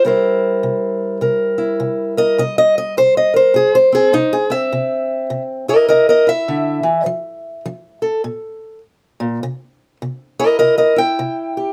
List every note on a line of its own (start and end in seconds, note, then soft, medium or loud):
0.05 0.58 C3 medium
0.05 4.72 G3 soft
0.05 1.58 E4 soft
0.05 1.21 A#4 medium
0.05 2.18 C5 medium
0.63 1.17 C3 medium
1.21 1.75 C3 medium
1.21 2.17 A#4 soft
1.58 2.42 E4 soft
1.80 2.33 C3 medium
2.17 2.41 A#4 soft
2.17 2.38 D#5 medium
2.38 2.92 C3 medium
2.38 2.57 D#5 medium
2.58 2.77 D#5 medium
2.78 2.97 D#5 medium
2.97 3.51 C3 medium
2.97 3.16 C5 medium
3.17 3.36 D#5 medium
3.34 3.56 A#4 soft
3.34 3.74 C5 medium
3.54 4.08 C3 medium
3.54 3.75 G#4 medium
3.75 4.51 C5 medium
3.92 4.13 C4 soft
3.92 4.14 G#4 medium
4.13 4.67 C3 medium
4.13 4.33 D#4 medium
4.33 4.52 G#4 medium
4.50 5.67 C4 soft
4.50 5.42 E5 medium
4.72 5.26 C3 medium
5.30 5.84 C3 medium
5.68 6.26 E4 soft
5.68 5.87 A#4 medium
5.68 5.89 D#5 medium
5.89 6.43 C3 medium
5.89 6.08 A#4 medium
5.89 6.09 D#5 medium
6.09 6.28 A#4 medium
6.09 6.28 D#5 medium
6.27 7.04 E4 soft
6.27 7.06 E5 loud
6.48 6.83 D3 medium
6.83 7.06 E3 medium
7.06 7.60 F3 medium
7.66 8.19 F3 medium
8.02 8.21 A4 soft
8.24 8.78 A#2 medium
9.20 9.42 A#2 medium
9.43 9.97 C3 medium
10.02 10.56 C3 medium
10.39 10.95 E4 soft
10.39 10.58 A#4 medium
10.39 10.58 D#5 medium
10.59 11.14 C3 medium
10.59 10.76 A#4 medium
10.59 10.77 D#5 medium
10.78 10.98 A#4 medium
10.78 10.98 D#5 medium
10.96 11.73 E4 soft
10.96 11.73 G5 medium
11.19 11.73 C3 medium
11.57 11.73 G4 soft